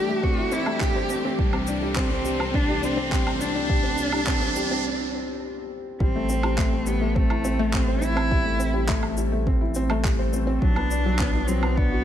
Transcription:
0.00 4.86 E3 medium
0.00 0.81 G3 medium
0.00 0.09 A3 loud
0.00 4.85 A3 medium
0.00 0.23 C4 loud
0.00 4.86 D4 medium
0.00 0.38 E4 medium
0.00 0.25 G4 loud
0.00 4.86 G4 medium
0.00 0.96 C5 medium
0.00 riser medium
0.09 0.23 A3 medium
0.23 0.37 C4 medium
0.23 0.54 F#4 loud
0.23 kick loud
0.38 0.52 E4 medium
0.52 0.66 C4 loud
0.52 0.82 E4 loud
0.52 shaker medium
0.66 0.80 A3 loud
0.66 low woodblock medium
0.80 0.90 G3 medium
0.80 1.24 G4 loud
0.80 kick loud
0.80 clap medium
0.96 1.04 C5 medium
1.10 1.23 C4 medium
1.10 shaker medium
1.25 1.38 C4 medium
1.39 4.85 C2 medium
1.39 1.53 G3 medium
1.39 1.99 G3 medium
1.39 kick loud
1.53 1.67 C4 medium
1.53 low woodblock medium
1.67 1.82 D4 medium
1.67 shaker medium
1.82 1.96 G3 medium
1.96 2.09 C4 loud
1.96 2.57 C4 loud
1.96 kick loud
1.96 clap medium
2.11 2.25 C4 medium
2.25 2.39 G3 medium
2.25 shaker medium
2.39 2.53 C4 medium
2.39 low woodblock medium
2.54 2.68 D4 medium
2.54 2.83 D4 loud
2.54 kick loud
2.68 2.82 G4 medium
2.83 3.43 C4 loud
2.83 2.97 D4 loud
2.83 shaker medium
2.97 3.11 C4 loud
3.11 3.20 G3 medium
3.11 kick loud
3.11 clap medium
3.26 3.35 G5 medium
3.26 low woodblock medium
3.40 3.53 D4 medium
3.40 5.43 D4 loud
3.40 shaker medium
3.54 3.69 D4 medium
3.69 3.83 G3 medium
3.69 kick loud
3.83 3.98 C4 medium
3.98 4.12 D4 medium
3.98 shaker medium
4.12 4.27 G3 medium
4.12 low woodblock medium
4.27 4.40 C4 loud
4.27 kick loud
4.27 clap loud
4.42 4.56 C4 medium
4.56 4.70 G3 medium
4.56 shaker medium
4.71 4.85 C4 medium
6.00 10.59 A1 medium
6.00 6.14 G3 medium
6.00 6.89 C4 medium
6.00 kick loud
6.15 6.29 A3 medium
6.29 6.43 C4 medium
6.29 shaker medium
6.43 6.58 G3 medium
6.43 low woodblock medium
6.58 6.71 A3 loud
6.58 kick loud
6.58 clap medium
6.73 6.86 A3 medium
6.87 7.01 G3 medium
6.87 7.18 B3 medium
6.87 shaker medium
7.01 7.15 A3 medium
7.15 7.76 A3 loud
7.15 7.29 C4 medium
7.15 kick loud
7.30 7.44 E4 medium
7.30 low woodblock medium
7.45 7.58 C4 loud
7.45 shaker medium
7.59 7.73 A3 loud
7.73 7.82 G3 medium
7.73 8.04 C4 loud
7.73 kick loud
7.73 clap medium
7.88 7.96 C5 medium
8.02 8.14 C4 medium
8.02 8.89 E4 loud
8.02 shaker medium
8.16 8.30 C4 medium
8.16 low woodblock medium
8.31 8.45 G3 medium
8.31 kick loud
8.45 8.59 A3 medium
8.59 8.74 C4 medium
8.59 shaker medium
8.74 8.88 G3 medium
8.88 9.01 A3 loud
8.88 kick loud
8.88 clap loud
9.03 9.17 A3 medium
9.03 low woodblock medium
9.17 9.31 G3 medium
9.17 shaker medium
9.32 9.46 A3 medium
9.47 9.61 C4 medium
9.47 kick loud
9.61 9.75 E4 medium
9.75 9.90 C4 loud
9.75 shaker medium
9.90 10.04 A3 loud
9.90 low woodblock medium
10.04 10.13 G3 medium
10.04 kick loud
10.04 clap loud
10.19 10.27 C5 medium
10.33 10.45 C4 medium
10.33 shaker medium
10.47 10.61 C4 medium
10.62 12.04 B1 medium
10.62 12.04 E3 medium
10.62 10.76 F#3 medium
10.62 11.49 D4 medium
10.62 kick loud
10.76 10.90 B3 medium
10.76 low woodblock medium
10.91 11.05 D4 medium
10.91 shaker medium
11.06 11.19 F#3 medium
11.19 11.33 B3 loud
11.19 kick loud
11.19 clap loud
11.35 11.48 B3 medium
11.48 11.62 F#3 medium
11.48 11.79 C4 medium
11.48 shaker medium
11.63 11.77 B3 medium
11.63 low woodblock medium
11.77 12.04 B3 loud
11.77 11.91 D4 medium
11.77 kick loud
11.87 12.04 F#4 medium
11.92 12.04 F#4 medium

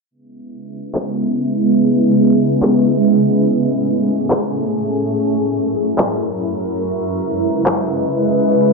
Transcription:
0.11 3.43 C#3 medium
0.11 3.43 G#3 medium
0.11 3.43 B3 medium
0.11 3.43 E4 medium
0.95 clap medium
2.62 clap loud
3.46 5.12 A2 medium
3.46 5.12 A3 medium
3.46 5.12 C#4 medium
3.46 5.12 G#4 medium
4.30 clap loud
5.14 6.80 F#2 medium
5.14 6.80 F#3 medium
5.14 6.80 E4 medium
5.14 6.80 A#4 medium
5.98 clap medium
6.82 8.73 C#3 medium
6.82 8.73 G#3 medium
6.82 8.73 E4 medium
6.82 8.73 B4 medium
7.66 clap medium

